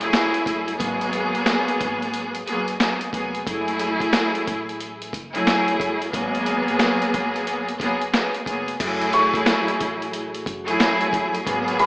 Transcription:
0.00 0.74 F#3 loud
0.00 0.74 A3 medium
0.00 0.75 E4 medium
0.00 0.75 G#4 loud
0.00 closed hi-hat medium
0.13 snare loud
0.13 snare medium
0.13 closed hi-hat medium
0.34 closed hi-hat medium
0.46 0.76 G1 medium
0.46 kick medium
0.46 closed hi-hat medium
0.68 closed hi-hat medium
0.78 1.30 G#1 loud
0.78 2.36 F#3 loud
0.78 2.36 A#3 loud
0.78 2.36 B3 loud
0.78 2.36 G#4 loud
0.78 kick loud
0.78 closed hi-hat loud
1.01 closed hi-hat medium
1.13 closed hi-hat medium
1.35 1.46 A1 medium
1.35 closed hi-hat medium
1.46 snare loud
1.46 snare medium
1.46 closed hi-hat medium
1.68 muted upright bass stroke soft
1.68 closed hi-hat medium
1.81 2.43 G#1 loud
1.81 kick loud
1.81 closed hi-hat medium
2.02 closed hi-hat soft
2.14 closed hi-hat medium
2.35 closed hi-hat medium
2.46 2.77 F#1 medium
2.46 2.78 F#3 medium
2.46 2.78 A#3 medium
2.46 2.78 B3 medium
2.46 2.78 G#4 loud
2.46 closed hi-hat medium
2.68 closed hi-hat medium
2.80 3.11 F#3 medium
2.80 3.11 A#3 medium
2.80 3.11 B3 medium
2.80 3.12 G#4 medium
2.80 snare loud
2.80 snare medium
2.80 closed hi-hat medium
3.01 closed hi-hat medium
3.13 3.43 F1 loud
3.13 3.44 F#3 medium
3.13 3.44 A#3 medium
3.13 3.44 B3 medium
3.13 3.45 G#4 medium
3.13 kick loud
3.13 closed hi-hat medium
3.35 closed hi-hat medium
3.47 3.97 F#1 loud
3.47 5.03 F#3 loud
3.47 5.03 A3 loud
3.47 5.04 E4 loud
3.47 5.04 G#4 loud
3.47 kick loud
3.47 closed hi-hat loud
3.68 closed hi-hat medium
3.79 closed hi-hat medium
4.00 4.12 A1 loud
4.00 kick medium
4.00 closed hi-hat medium
4.13 snare loud
4.13 snare medium
4.13 closed hi-hat medium
4.35 muted upright bass stroke medium
4.35 closed hi-hat medium
4.47 5.10 A1 medium
4.47 kick loud
4.47 closed hi-hat medium
4.69 closed hi-hat soft
4.80 closed hi-hat medium
5.02 closed hi-hat medium
5.13 5.43 F#1 loud
5.13 kick medium
5.13 closed hi-hat medium
5.33 6.08 F#3 loud
5.33 6.08 A3 medium
5.33 6.08 E4 medium
5.33 6.08 G#4 loud
5.33 closed hi-hat medium
5.47 snare loud
5.47 snare medium
5.47 closed hi-hat medium
5.68 closed hi-hat medium
5.80 6.10 G1 medium
5.80 kick loud
5.80 closed hi-hat medium
6.02 closed hi-hat medium
6.12 6.64 G#1 loud
6.12 7.69 F#3 loud
6.12 7.69 A#3 loud
6.12 7.69 B3 loud
6.12 7.69 G#4 loud
6.12 kick loud
6.12 closed hi-hat loud
6.35 closed hi-hat medium
6.46 closed hi-hat medium
6.68 6.79 A1 medium
6.68 closed hi-hat medium
6.79 snare loud
6.79 snare medium
6.79 closed hi-hat medium
7.02 muted upright bass stroke soft
7.02 closed hi-hat medium
7.14 7.76 G#1 loud
7.14 kick loud
7.14 closed hi-hat medium
7.36 closed hi-hat soft
7.47 closed hi-hat medium
7.68 closed hi-hat medium
7.80 8.10 F#1 medium
7.80 8.11 F#3 medium
7.80 8.11 A#3 medium
7.80 8.12 B3 medium
7.80 8.12 G#4 loud
7.80 kick loud
7.80 closed hi-hat medium
8.01 closed hi-hat medium
8.13 8.44 F#3 medium
8.13 8.45 A#3 medium
8.13 8.45 B3 medium
8.13 8.45 G#4 medium
8.13 snare loud
8.13 snare medium
8.13 closed hi-hat medium
8.34 closed hi-hat medium
8.46 8.77 F1 loud
8.46 8.78 F#3 medium
8.46 8.78 A#3 medium
8.46 8.78 B3 medium
8.46 8.78 G#4 medium
8.46 kick loud
8.46 closed hi-hat medium
8.68 closed hi-hat medium
8.80 9.30 F#1 loud
8.80 11.44 E3 medium
8.80 10.37 F#3 loud
8.80 11.44 A3 medium
8.80 10.37 A3 loud
8.80 10.37 E4 loud
8.80 11.86 F#4 medium
8.80 11.86 G#4 medium
8.80 10.37 G#4 loud
8.80 kick loud
8.80 closed hi-hat loud
8.80 crash loud
9.01 closed hi-hat medium
9.13 10.76 C#6 medium
9.13 closed hi-hat medium
9.34 9.45 A1 loud
9.34 kick loud
9.34 closed hi-hat medium
9.46 snare loud
9.46 closed hi-hat loud
9.68 muted upright bass stroke medium
9.68 closed hi-hat medium
9.81 10.43 A1 medium
9.81 kick loud
9.81 closed hi-hat medium
10.02 closed hi-hat soft
10.13 closed hi-hat medium
10.35 closed hi-hat medium
10.46 10.77 F#1 loud
10.46 kick loud
10.46 closed hi-hat medium
10.66 11.41 F#3 loud
10.66 11.41 A3 medium
10.66 11.41 E4 medium
10.66 11.41 G#4 loud
10.66 closed hi-hat medium
10.80 snare loud
10.80 snare medium
10.80 closed hi-hat loud
11.01 closed hi-hat medium
11.13 11.43 G1 loud
11.13 kick loud
11.13 closed hi-hat medium
11.35 closed hi-hat medium
11.45 11.86 G#1 loud
11.45 11.86 B2 medium
11.45 11.86 F#3 loud
11.45 11.86 G#3 medium
11.45 11.86 A#3 loud
11.45 11.86 B3 loud
11.45 11.86 G#4 loud
11.45 kick loud
11.45 closed hi-hat loud
11.68 closed hi-hat medium
11.79 11.86 B5 medium
11.79 closed hi-hat medium

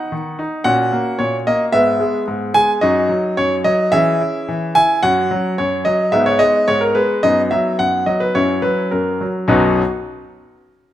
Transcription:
0.00 0.62 B3 soft
0.00 0.11 D#4 medium
0.00 0.62 F#4 soft
0.00 0.39 F#5 medium
0.12 0.38 D#3 soft
0.39 0.65 D#4 medium
0.64 0.92 A#2 medium
0.64 1.70 C#4 soft
0.64 1.69 F#4 soft
0.64 1.19 F#5 medium
0.92 1.19 A#3 medium
1.19 1.46 A#2 soft
1.19 1.35 C#5 medium
1.47 1.73 A#3 soft
1.47 1.63 D#5 medium
1.73 2.00 G#2 medium
1.73 2.79 B3 soft
1.73 2.79 B4 soft
1.73 2.22 E5 loud
2.00 2.27 G#3 medium
2.28 2.55 G#2 soft
2.54 2.82 G#3 medium
2.54 2.71 G#5 loud
2.81 3.09 F#2 medium
2.81 3.89 D#4 soft
2.81 3.89 F#4 soft
2.81 3.37 D#5 medium
3.09 3.37 F#3 soft
3.37 3.65 F#2 soft
3.37 3.54 C#5 medium
3.64 3.92 F#3 soft
3.64 3.90 D#5 medium
3.92 4.20 E3 medium
3.92 4.99 C#4 soft
3.92 4.99 G#4 soft
3.92 4.75 E5 loud
4.21 4.47 E4 medium
4.49 4.75 E3 medium
4.75 5.02 E4 medium
4.75 5.03 G#5 loud
5.03 5.30 F#2 medium
5.03 6.09 C#4 soft
5.03 6.09 F#4 soft
5.03 5.54 F#5 loud
5.31 5.57 F#3 medium
5.58 5.85 F#2 soft
5.58 5.86 C#5 medium
5.85 6.12 F#3 medium
5.85 6.13 D#5 medium
6.12 6.39 G#2 medium
6.12 7.20 B3 soft
6.12 7.20 D#4 soft
6.12 6.26 E5 medium
6.26 6.40 C#5 medium
6.39 6.67 G#3 medium
6.39 6.67 D#5 medium
6.68 6.95 G#2 soft
6.68 6.82 C#5 medium
6.81 6.95 A#4 medium
6.95 7.22 G#3 medium
6.95 7.20 B4 medium
7.23 7.50 F#2 medium
7.23 8.31 B3 soft
7.23 8.31 D#4 soft
7.23 7.40 D#5 medium
7.51 7.79 F#3 soft
7.51 7.76 E5 medium
7.79 8.06 F#2 soft
7.79 8.04 F#5 medium
8.06 8.34 F#3 soft
8.06 8.21 D#5 medium
8.20 8.35 B4 medium
8.35 8.63 F#2 medium
8.35 9.47 C#4 soft
8.35 9.46 E4 soft
8.35 8.61 C#5 medium
8.62 8.91 F#3 soft
8.62 8.89 B4 medium
8.91 9.21 F#2 soft
8.91 9.26 A#4 medium
9.21 9.47 F#3 soft
9.48 9.81 B1 medium
9.48 9.81 F#2 medium
9.48 9.81 F#3 medium
9.48 9.81 B3 medium
9.48 9.81 D#4 medium
9.48 9.81 F#4 medium
9.48 9.81 D#5 medium

